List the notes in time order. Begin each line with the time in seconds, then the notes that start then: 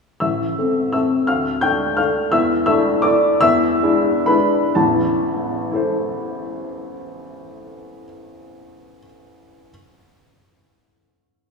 0.20 A1 E5 E6
0.58 A3 C4 A4
0.93 A3 C4 A4 E5 E6
1.27 D2 F5 F6
1.61 A3 D4 A4 G5 G6
1.97 A3 D4 A4 F5 F6
2.32 E2 E5 E6
2.66 A3 D4 E4 E5 E6
3.02 A3 D4 E4 D5 D6
3.41 E2 E5 E6
3.83 G#3 D4 E4
4.26 G#3 D4 E4 B4 B5
4.75 A1 E2 A5
5.71 E4 A4
5.76 C5